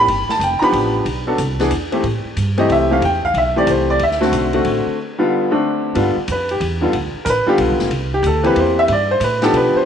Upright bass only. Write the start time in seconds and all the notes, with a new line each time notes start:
0.08 G1
0.29 muted upright bass stroke
0.39 F1
0.61 muted upright bass stroke
0.72 A1
1.05 B1
1.38 C2
1.71 E2
2.03 A2
2.24 muted upright bass stroke
2.37 G2
2.69 C2
3.01 E2
3.34 B1
3.67 C2
4.00 D2
4.32 B1
4.65 A1
4.86 muted upright bass stroke
5.95 G2
6.16 muted upright bass stroke
6.28 F2
6.60 E2
6.93 D2
7.14 muted upright bass stroke
7.26 A1
7.46 muted upright bass stroke
7.58 B1
7.69 G1
7.80 F1
7.90 C2
8.23 D2
8.56 E2
8.88 G2
9.20 A2
9.53 B2
9.74 muted upright bass stroke